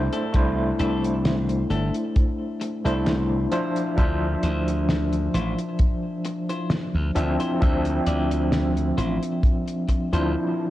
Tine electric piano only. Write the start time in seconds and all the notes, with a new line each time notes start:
Already playing: A3 D4 E4 C5
0.32 A3 D4 E4 C5
2.85 A3 D4 E4 C5
3.52 F3 D4 C5 E5
3.96 F3 D4 C5 E5
7.15 F3 C4 D4 E5
7.60 F3 C4 D4 E5
10.12 F3 D4 E4 C5